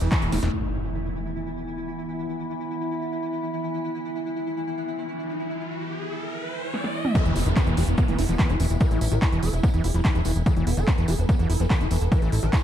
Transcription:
Already playing: A3 D#4
0.01 E1 E3 E4, closed hi-hat, tambourine
0.11 E3 E4, kick, clap, closed hi-hat, ride, tambourine
0.22 E1 E4, closed hi-hat, tambourine
0.32 E1 F3 E4, snare, open hi-hat, ride, tambourine
0.43 E1 E3 E4, snare, closed hi-hat, tambourine
0.53 E3 B3 E4, crash, impact
0.69 E4 E5
0.99 B5
3.84 riser
6.74 snare
6.84 snare
7.05 mid tom
7.15 E3 E4 A4, kick, closed hi-hat, tambourine, downlifter
7.25 E1 E3 B3, closed hi-hat, tambourine
7.36 E1 B3 E4, open hi-hat, tambourine
7.46 E1 D#3 B3 A4, closed hi-hat
7.56 B3, kick, clap, closed hi-hat, tambourine
7.67 E1 E3 B3, closed hi-hat, tambourine
7.77 E1 E3 G#4, open hi-hat, tambourine
7.88 E1 B3, closed hi-hat, tambourine
7.97 B3, kick, closed hi-hat, tambourine
8.08 E1 E3 B3, closed hi-hat, tambourine
8.18 E1 E4, open hi-hat, tambourine
8.29 E1 F3 B3, closed hi-hat, tambourine
8.39 E3 G#3 B3, kick, clap, closed hi-hat, tambourine
8.49 E1 E3 G#3 E4, closed hi-hat, tambourine
8.60 E1 E3 B3, open hi-hat, tambourine
8.70 E1 B3, closed hi-hat, tambourine
8.80 E3 B4, kick, closed hi-hat, tambourine
8.90 A1 E3 E4, closed hi-hat, tambourine
9.01 A1 E3 E4, open hi-hat, tambourine
9.12 A1 D#3 E3 B4, closed hi-hat, tambourine
9.22 E4, kick, clap, closed hi-hat, tambourine
9.32 E1 E3 E4, closed hi-hat, tambourine
9.43 E1 E3 A4, open hi-hat, tambourine
9.53 E1 E4, closed hi-hat, tambourine
9.63 B3 E4, kick, closed hi-hat, tambourine
9.74 E1 E3 E4, closed hi-hat, tambourine
9.84 E1 E4 G#4, open hi-hat, tambourine
9.94 E1 F3 E4, closed hi-hat, tambourine
10.05 E3 E4, kick, clap, closed hi-hat, tambourine
10.15 E1 E3 E4, closed hi-hat, tambourine
10.25 E1 E3 E4, open hi-hat, tambourine
10.36 E1 E4, closed hi-hat, tambourine
10.46 E3 A4, kick, closed hi-hat, tambourine
10.57 E1 E3 B3, closed hi-hat
10.67 E1 B3 E4, open hi-hat, tambourine
10.77 E1 D#3 A4, closed hi-hat, tambourine
10.88 B3, kick, clap, closed hi-hat, tambourine
10.98 E1 E3 B3, closed hi-hat, tambourine
11.08 E1 E3 G#4, open hi-hat, tambourine
11.19 E1 B3, closed hi-hat, tambourine
11.29 B3, kick, closed hi-hat, tambourine
11.39 E1 E3 B3, closed hi-hat, tambourine
11.50 E1 E4, open hi-hat, tambourine
11.60 E1 F3 B3, closed hi-hat, tambourine
11.70 E3 B3, kick, clap, closed hi-hat, tambourine
11.81 E1 E3 E4, closed hi-hat, tambourine
11.91 E1 E3 B3, open hi-hat, tambourine
12.01 E1 B3, closed hi-hat, tambourine
12.12 E3 B4, kick, closed hi-hat, tambourine
12.22 A1 E3 E4, closed hi-hat, tambourine
12.32 A1 E4, open hi-hat, tambourine
12.43 A1 D#3 B4, closed hi-hat, tambourine
12.53 E4, kick, clap, closed hi-hat, tambourine

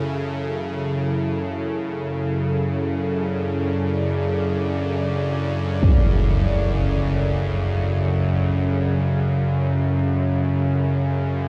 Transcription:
Already playing: F#2 C#3 F#3 E4 A4
2.04 D5
5.83 impact
9.64 C#5

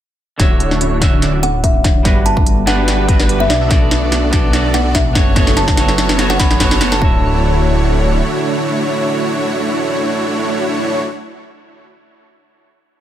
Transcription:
0.38 D1 D3 A3 C#4 D4 E4 F#4 C#5 E5 F#5, kick, snare, closed hi-hat
0.51 F#4
0.60 A4, closed hi-hat
0.71 D4, snare
0.81 C#4, closed hi-hat
0.92 C#4
1.00 D3 A3 C#4 D4 E4 F#4 C#5 E5, kick, snare, closed hi-hat
1.13 D4
1.22 A3 C#4 D4 E4 F#4 D5, snare, closed hi-hat
1.33 F#4
1.43 A4 F#5, closed hi-hat
1.54 D4
1.64 C#4 E5, kick, closed hi-hat
1.75 C#4
1.84 C#5, kick, snare, closed hi-hat
1.95 D4
2.03 G1 G3 B3 D4 F#4 A4 B4, kick, snare, closed hi-hat
2.07 B4
2.16 G4
2.26 B4 A5, closed hi-hat
2.37 D4, kick
2.46 B3, closed hi-hat
2.58 B3
2.66 G3 B3 D4 F#4 G4 B4 D5 F#5, snare, closed hi-hat
2.78 D4
2.88 B3, snare, closed hi-hat
2.99 G4
3.08 G3 B3 D4 F#4 G4 B4 E5, kick, closed hi-hat
3.19 B3 D4 F#4 G4 B4, snare
3.29 B3, closed hi-hat
3.40 B3 E5
3.50 B1 A3 B3 D4 D5, snare, closed hi-hat
3.61 B3 D4 F#4 A4 E5
3.69 B3 D4 F#4 A4 D5, kick, snare, closed hi-hat
3.73 D5
3.82 A4
3.91 B4, snare, closed hi-hat
4.02 D4
4.12 B3, snare, closed hi-hat
4.23 B3
4.31 B3 D4 F#4 A4 D5, kick, snare, closed hi-hat
4.44 D4
4.51 B3 D4 F#4 A4 D5, snare, closed hi-hat
4.55 D5
4.65 A4
4.74 B4 F#5, snare, closed hi-hat
4.85 D4
4.95 B3 E5, kick, snare, closed hi-hat
5.06 B3
5.13 F#1 F#3 B3 C#4 E4 F#4 A4 C#5, kick, snare, closed hi-hat
5.17 C#5
5.26 C#4
5.34 B3 C#4 F#4 A4 C#5, kick, snare, closed hi-hat
5.47 A4, snare
5.57 B4 A5, snare, closed hi-hat
5.68 C#4, kick, snare
5.75 B3 C#4 F#4 A4 C#5, snare, closed hi-hat
5.79 C#5
5.88 A4, snare
5.98 B4, snare, closed hi-hat
6.09 C#4, snare
6.17 B3 C#4 F#4 A4 C#5, snare, closed hi-hat
6.21 C#5
6.30 A4 F#5, snare
6.37 B3 C#4 F#4 A4 C#5 B5, kick, snare, closed hi-hat
6.51 A4, snare
6.58 B3 C#4 F#4 A4 C#5, kick, snare, closed hi-hat
6.62 C#5
6.71 A4, snare
6.79 B3 C#4 F#4 A4 C#5, snare, closed hi-hat
6.92 A4 A5, snare
6.99 D1 D3 A3 C#4 D4 E4 F#4 C#5 A5, kick
7.03 F#4 E5

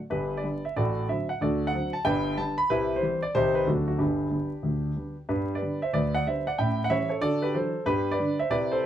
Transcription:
0.10 G1 G2 D4 G4 B4
0.37 D5
0.43 D3 G3 B3
0.65 E5
0.76 A1 A2 F#4 A4 D5
1.09 D3 F#3 C4 E5
1.29 F#5
1.41 D2 D3 F#4 A4 D5
1.67 F#5
1.72 D3 F#3 C4
1.93 A5
2.05 G1 G2 B4 D5 G5
2.37 D3 G3 B3 A5
2.58 B5
2.70 C2 C3 E4 G4 B4
2.96 C5
3.02 E3 G3 C4
3.22 D5
3.35 C2 C3 D#3 G3 C4 D#4 G4 C5
3.55 B4
3.66 D2 D3 F#3 C4 D4 F#4 A4
3.88 F#4
3.98 G1 G2 B3 D4 G4
4.31 D3 G3 B3
4.63 D2 D3
4.96 D3 G3 B3
5.29 G2 B3 G4 B4
5.55 B4 D5
5.61 D3 G3 B3
5.82 C5 E5
5.93 D2 B4 D5
6.15 D5 F#5
6.27 D3 G3 B3 C5 E5
6.47 D5 F#5
6.59 A2 C#4 E5 G5
6.84 F#5
6.90 E3 G3 C#4 C#5 E5
7.09 A4 C#5
7.21 D3 F#4 A4 D5
7.42 G4 B4
7.54 E3 F#3 D4 A4 C5
7.86 G2 B3 G4 B4
8.12 B4 D5
8.19 D3 G3 D4
8.39 C5 E5
8.50 C3 E4 B4 D5
8.72 A4 C5

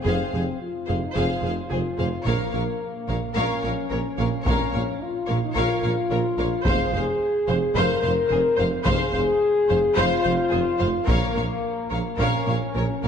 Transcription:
0.04 F1 F2 C4 G#4 C5 F5
0.33 F1 F2 G#4 C5 F5
0.62 F4
0.87 F1 F2 G#4 C5 F5
1.03 D#4
1.14 F1 F2 F4 G#4 C5 F5
1.42 F1 F2 G#4 C5 F5
1.70 F1 F2 G#4 C5
1.98 F1 F2 G#4 C5 F5
2.25 A#1 A#2 A#3 A#4 C#5 F5, taiko
2.51 A#1 A#2 A#4 C#5 F5
3.08 A#1 A#2 A#4 C#5 F5, taiko
3.36 A#1 A#2 C#4 A#4 C#5 F5
3.62 A#1 A#2 A#4 C#5 F5
3.89 A#1 A#2 A#4 C#5
4.17 A#1 A#2 A#4 C#5 F5
4.44 A#1 A#2 C#4 A#4 C#5 F5, taiko
4.72 A#1 A#2 A#4 C#5 F5
5.02 F4
5.28 A#1 A#2 A#4 C#5 F5
5.44 D#4
5.55 A#1 A#2 F4 A#4 C#5 F5
5.82 A#1 A#2 A#4 C#5 F5
6.10 A#1 A#2 A#4 C#5
6.38 A#1 A#2 A#4 C#5 F5
6.65 F1 F2 G#4 C5 F5, taiko
6.93 F1 F2 C5 F5
7.48 F1 F2 C5 F5
7.75 F1 F2 A#4 C5 F5
8.02 F1 F2 C5 F5
8.29 F1 F2 G#4 C5
8.57 F1 F2 C5 F5
8.84 F1 F2 G#4 C5 F5, taiko
9.12 F1 F2 C5 F5
9.69 F1 F2 C5 F5
9.95 F1 F2 F4 C5 F5
10.23 F1 F2 C5 F5
10.50 F1 F2 G#4 C5
10.54 F1
10.79 F1 F2 C5 F5
11.07 A#1 A#2 A#3 A#4 C#5 F5, taiko
11.34 A#1 A#2 A#4 C#5 F5
11.90 A#1 A#2 A#4 C#5 F5
12.17 A#1 A#2 C#4 A#4 C#5 F5
12.46 A#1 A#2 A#4 C#5 F5
12.74 A#1 A#2 A#4 C#5
13.02 A#1 A#2 A#4 C#5 F5

